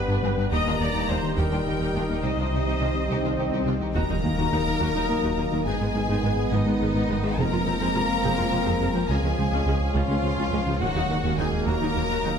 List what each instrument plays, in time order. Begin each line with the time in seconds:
Already playing: sub bass G1, trombone section G3 B3, ambient pad G3 D4 G4 B4, viola section B4
0.08 analog synth bass G2, cello section G2, synth pluck G3, violin section D4 B4
0.23 double bass section G1, cello section G2, analog synth bass G3, violin section C4 G#4, synth pluck D4
0.37 analog synth bass G2, cello section G2, synth pluck B3, violin section D4 B4
0.51 sub bass D#1, cello section D#2, analog synth bass D#2, double bass section D#2, synth pluck D#3, trombone section G3 D#4, french horn section A#3, violin section D#4 G4 A#5, ambient pad D#4 D#5, viola section D#5
0.66 analog synth bass D#2, cello section D#2, synth pluck G3, violin section D4 F4
0.80 analog synth bass D#2, cello section D#2, double bass section D#2, synth pluck G3, violin section D#4 G4, viola section D5
0.95 analog synth bass D#2, cello section D#2, synth pluck D#3, violin section D#4 G4
1.09 analog synth bass D#2, double bass section D#2, cello section D#2, violin section D4 F4, viola section C5
1.23 analog synth bass D#3
1.37 analog synth bass D#2, double bass section D#2, cello section D#2, synth pluck D#3, french horn section G3, violin section D#4 G4 G5, viola section A#4
1.52 analog synth bass D#2, cello section D#2, synth pluck G3, violin section D4 F4
1.66 analog synth bass D#2, double bass section D#2, cello section D#2, synth pluck D#4, violin section D#4 G4
1.80 analog synth bass D#2, cello section D#2, synth pluck D#3, violin section D#4 G4
1.94 double bass section D#2, cello section D#2, analog synth bass D#3, synth pluck A#3, violin section D4 F4
2.09 analog synth bass D#2, cello section D#2, synth pluck G3, violin section D#4 G4
2.23 analog synth bass C2, double bass section C2, sub bass C2, cello section C2, french horn section C3, synth pluck C3, ambient pad G3 G4, violin section D#4 G4 C5, viola section D#5, swell
2.37 analog synth bass C2, cello section C2, synth pluck D#3, violin section D4 F4
2.51 analog synth bass C2, cello section C2, double bass section C2, synth pluck D#3, violin section D#4 G4
2.66 analog synth bass C2, cello section C2, synth pluck C3, violin section D#4 G4
2.80 cello section C2, double bass section C2, analog synth bass C2, synth pluck D#3, violin section D4 F4
2.95 analog synth bass C3
3.09 cello section C2, double bass section C2, analog synth bass C2, synth pluck C3, violin section D#4 G4
3.24 cello section C2, analog synth bass C2, synth pluck D#3, violin section D4 F4
3.38 cello section C2, analog synth bass C2, double bass section C2, violin section D#4 G4
3.51 analog synth bass C2, cello section C2, synth pluck C3, violin section D#4 G4
3.66 cello section C2, double bass section C2, analog synth bass C3, synth pluck G3, violin section D4 F4
3.81 analog synth bass C2, cello section C2, synth pluck D#3, violin section D#4 G4
3.95 sub bass D#1, analog synth bass D#2, cello section D#2, double bass section D#2, synth pluck D#3, ambient pad F#3 D#4 A#4 D#5, trombone section F#3 D#4, french horn section A#3, viola section D#4 F#4, violin section A#4 A#5, impact
4.09 cello section D#2, analog synth bass D#2, synth pluck F#3, viola section A#3 D#4
4.24 cello section D#2, double bass section D#2, analog synth bass D#3, viola section F#3 A#3, synth pluck A#3
4.38 analog synth bass D#2, cello section D#2, synth pluck D#3, viola section D#4 F#4
4.52 double bass section D#2, analog synth bass D#2, cello section D#2, viola section A#3 D#4, synth pluck D#4
4.66 analog synth bass D#2
4.80 analog synth bass D#2, double bass section D#2, cello section D#2, synth pluck D#3, viola section D#4 F#4
4.95 cello section D#2, analog synth bass D#3, viola section A#3 D#4, synth pluck A#3
5.09 double bass section D#2, cello section D#2, analog synth bass D#3, viola section F#3 A#3, synth pluck A#3
5.23 analog synth bass D#2, cello section D#2, synth pluck D#3, viola section D#4 F#4
5.38 analog synth bass D#2, cello section D#2, double bass section D#2, synth pluck F#3, viola section A#3 D#4
5.52 cello section D#2, analog synth bass D#3, viola section F#3 A#3, synth pluck A#3
5.66 double bass section G#1, sub bass G#1, analog synth bass G#2, cello section G#2, trombone section D#3 B3, synth pluck G#3, french horn section G#3, ambient pad G#3 B4, viola section B3 D#4, violin section G#4 G#5
5.80 analog synth bass G#2, cello section G#2, viola section G#3 B3, synth pluck B3
5.94 double bass section G#1, cello section G#2, viola section D#3 G#3, analog synth bass G#3, synth pluck D#4
6.09 analog synth bass G#2, cello section G#2, synth pluck G#3, viola section B3 D#4
6.23 double bass section G#1, analog synth bass G#2, cello section G#2, viola section G#3 B3, synth pluck G#4
6.37 analog synth bass G#2
6.51 double bass section G#1, analog synth bass G#2, cello section G#2, french horn section D#3, synth pluck G#3, viola section B3 D#4, violin section D#4 D#5
6.66 cello section G#2, analog synth bass G#3, viola section G#3 B3, synth pluck D#4
6.80 double bass section G#1, cello section G#2, viola section D#3 G#3, analog synth bass G#3, synth pluck D#4
6.95 analog synth bass G#2, cello section G#2, synth pluck G#3, viola section B3 D#4
7.08 double bass section G#1, analog synth bass G#2, cello section G#2, viola section G#3 B3, synth pluck B3
7.23 cello section G#2, viola section D#3 G#3, analog synth bass G#3, synth pluck D#4
7.37 sub bass F1, double bass section F1, analog synth bass F2, cello section F2, synth pluck F3, trombone section F3 C4, french horn section A#3, viola section C4 G#4, ambient pad C4 C5 F5, violin section A#4 A#5
7.52 analog synth bass F2, cello section F2, viola section G#3 F4, synth pluck G#3
7.67 double bass section F1, cello section F2, analog synth bass F3, viola section F3 C4, synth pluck C4
7.80 analog synth bass F2, cello section F2, synth pluck F3, viola section C4 G#4
7.94 double bass section F1, analog synth bass F2, cello section F2, viola section G#3 F4, synth pluck F4
8.09 analog synth bass F2
8.23 double bass section F1, analog synth bass F2, cello section F2, synth pluck F3, viola section C4 G#4
8.38 cello section F2, analog synth bass F3, viola section G#3 F4, synth pluck C4
8.52 double bass section F1, cello section F2, analog synth bass F3, viola section F3 C4, synth pluck C4
8.66 analog synth bass F2, cello section F2, synth pluck F3, viola section C4 G#4
8.80 double bass section F1, analog synth bass F2, cello section F2, viola section G#3 F4, synth pluck G#3
8.95 cello section F2, analog synth bass F3, viola section F3 C4, synth pluck C4
9.09 double bass section C#2, analog synth bass C#2, sub bass C#2, cello section C#2, synth pluck C#3, french horn section G#3, viola section C#4 F4, trombone section C#4, ambient pad C#4 G#4, violin section G#4 G#5
9.24 analog synth bass C#2, cello section C#2, synth pluck F3, viola section G#3 C#4
9.38 cello section C#2, double bass section C#2, analog synth bass C#3, viola section F3 G#3, synth pluck G#3
9.52 analog synth bass C#2, cello section C#2, synth pluck C#3, viola section C#4 F4
9.66 analog synth bass C#2, double bass section C#2, cello section C#2, viola section G#3 C#4, synth pluck C#4
9.80 analog synth bass C#2
9.95 analog synth bass C#2, double bass section C#2, cello section C#2, synth pluck C#3, french horn section F3, viola section C#4 F4, violin section F4 F5
10.08 cello section C#2, analog synth bass C#3, viola section G#3 C#4, synth pluck G#3
10.23 double bass section C#2, cello section C#2, analog synth bass C#3, viola section F3 G#3, synth pluck G#3
10.38 analog synth bass C#2, cello section C#2, synth pluck C#3, viola section C#4 F4
10.52 analog synth bass C#2, double bass section C#2, cello section C#2, synth pluck F3, viola section G#3 C#4
10.66 cello section C#2, analog synth bass C#3, viola section F3 G#3, synth pluck G#3
10.80 sub bass D#1, analog synth bass D#2, double bass section D#2, cello section D#2, synth pluck D#3, ambient pad D#3 A#3 F#4 D#5, trombone section F#3 A#3, french horn section F#3, viola section A#3 F#4, violin section F#4 F#5
10.95 analog synth bass D#2, cello section D#2, synth pluck F#3, viola section F#3 D#4
11.09 double bass section D#2, cello section D#2, analog synth bass D#3, viola section D#3 A#3, synth pluck A#3
11.24 analog synth bass D#2, cello section D#2, synth pluck D#3, viola section A#3 F#4
11.38 analog synth bass D#2, double bass section D#2, cello section D#2, viola section F#3 D#4, french horn section G#3, synth pluck D#4, violin section G#4 G#5
11.52 analog synth bass D#2
11.66 double bass section D#2, analog synth bass D#2, cello section D#2, synth pluck D#3, french horn section A#3, viola section A#3 F#4, violin section A#4 A#5
11.81 cello section D#2, analog synth bass D#3, viola section F#3 D#4, synth pluck A#3
11.95 double bass section D#2, cello section D#2, analog synth bass D#3, viola section D#3 A#3
12.09 analog synth bass D#2, cello section D#2, synth pluck D#3, viola section A#3 F#4
12.23 analog synth bass D#2, double bass section D#2, cello section D#2, synth pluck F#3, viola section F#3 D#4